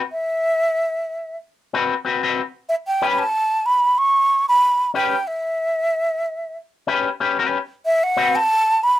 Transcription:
0.12 1.37 E5 medium
1.73 1.93 C4 medium
1.73 1.94 F#4 medium
1.73 1.94 B4 loud
2.05 2.21 C4 medium
2.05 2.22 F#4 medium
2.05 2.22 B4 medium
2.23 2.41 C4 medium
2.23 2.40 F#4 medium
2.23 2.40 B4 medium
2.69 2.75 E5 medium
2.87 3.09 G5 loud
3.02 3.22 C#4 medium
3.02 3.22 G4 medium
3.02 3.22 B4 medium
3.10 3.20 B5 medium
3.19 3.67 A5 loud
3.66 4.00 B5 loud
3.98 4.48 C#6 loud
4.48 4.92 B5 loud
4.94 5.15 C#4 medium
4.94 5.15 G4 medium
4.94 5.15 B4 medium
4.94 5.29 G5 medium
5.27 6.56 E5 loud
6.87 7.08 C#4 medium
6.87 7.08 G4 medium
6.87 7.08 B4 medium
7.20 7.37 C#4 medium
7.20 7.37 G4 medium
7.20 7.37 B4 medium
7.39 7.57 C#4 medium
7.39 7.57 G4 medium
7.39 7.57 B4 medium
7.85 8.05 E5 loud
8.03 8.37 F#5 loud
8.17 8.37 C4 medium
8.17 8.37 F#4 medium
8.17 8.37 B4 medium
8.35 8.85 A5 loud
8.83 8.99 B5 loud

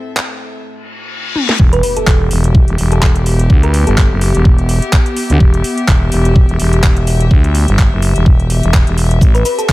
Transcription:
0.00 0.60 A3 medium
0.00 0.64 C4 medium
0.00 0.60 A4 medium
0.00 0.64 A4 medium
0.00 0.60 C5 medium
0.00 0.60 E5 medium
0.00 0.64 E5 medium
0.17 clap loud
0.64 reverse cymbal medium
1.36 high tom medium
1.49 snare medium
1.59 1.82 E1 loud
1.59 9.21 B3 medium
1.59 kick loud
1.59 impact medium
1.69 9.72 G4 medium
1.69 1.79 B4 medium
1.69 closed hi-hat medium
1.83 1.92 B4 medium
1.83 open hi-hat loud
1.92 9.72 E5 medium
1.97 2.12 A4 medium
1.97 closed hi-hat medium
2.07 2.29 E1 loud
2.07 kick loud
2.07 clap loud
2.31 2.66 E1 medium
2.31 open hi-hat loud
2.44 closed hi-hat medium
2.55 kick loud
2.68 2.77 E1 medium
2.68 closed hi-hat soft
2.78 3.01 E1 loud
2.78 open hi-hat loud
2.92 3.07 A4 medium
2.92 closed hi-hat medium
3.02 kick loud
3.02 clap loud
3.16 closed hi-hat medium
3.26 open hi-hat loud
3.39 closed hi-hat medium
3.50 3.85 D2 loud
3.50 kick loud
3.63 3.84 B4 loud
3.63 closed hi-hat medium
3.74 open hi-hat loud
3.87 4.09 G1 loud
3.87 4.35 A4 medium
3.87 closed hi-hat medium
3.98 kick loud
3.98 clap loud
4.11 4.33 F#1 loud
4.21 open hi-hat loud
4.35 4.80 E1 loud
4.35 closed hi-hat medium
4.45 kick loud
4.58 closed hi-hat soft
4.69 open hi-hat loud
4.82 closed hi-hat medium
4.93 kick loud
4.93 clap loud
5.06 closed hi-hat medium
5.17 open hi-hat loud
5.30 5.39 D2 loud
5.30 closed hi-hat medium
5.40 5.63 E1 loud
5.40 kick loud
5.54 closed hi-hat soft
5.64 open hi-hat loud
5.78 closed hi-hat medium
5.88 6.10 E1 loud
5.88 kick loud
5.88 clap loud
6.12 6.47 E1 medium
6.12 open hi-hat loud
6.25 closed hi-hat medium
6.36 kick loud
6.49 6.58 E1 loud
6.49 closed hi-hat soft
6.59 6.82 E1 loud
6.59 open hi-hat loud
6.73 closed hi-hat medium
6.83 kick loud
6.83 clap loud
6.97 closed hi-hat medium
7.07 open hi-hat loud
7.20 closed hi-hat medium
7.31 7.66 D2 loud
7.31 kick loud
7.44 closed hi-hat soft
7.55 open hi-hat loud
7.68 7.90 G1 loud
7.68 closed hi-hat medium
7.78 kick loud
7.78 clap loud
7.92 8.13 F#1 loud
8.02 open hi-hat loud
8.16 8.61 E1 loud
8.16 closed hi-hat medium
8.26 kick loud
8.40 closed hi-hat soft
8.50 open hi-hat loud
8.63 8.85 E1 loud
8.63 closed hi-hat medium
8.74 kick loud
8.74 clap loud
8.87 9.20 E1 loud
8.87 closed hi-hat medium
8.98 open hi-hat loud
9.11 closed hi-hat medium
9.21 9.43 A1 loud
9.21 9.72 C4 medium
9.21 kick loud
9.21 cabasa soft
9.35 9.41 B4 medium
9.35 closed hi-hat soft
9.35 cabasa soft
9.45 9.54 B4 medium
9.45 open hi-hat loud
9.45 cabasa medium
9.52 9.72 A4 medium
9.58 9.72 A4 medium
9.58 closed hi-hat medium
9.58 cabasa soft
9.69 9.72 A1 loud
9.69 kick loud
9.69 clap loud
9.69 cabasa soft

